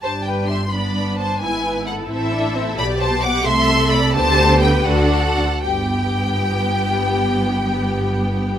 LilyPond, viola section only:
\new Staff \with { instrumentName = "Viola section" } { \time 6/8 \key g \major \tempo 4. = 84 << { g'4. d'4. | e'4. e'4. | g'4. a'4. | g'4. fis'4 r8 |
g'2.~ | g'2. | } \\ { d'4. b4. | b4. c'8 d'8 c'8 | b4. a4. | b4. d'4 r8 |
b2.~ | b2. | } >> }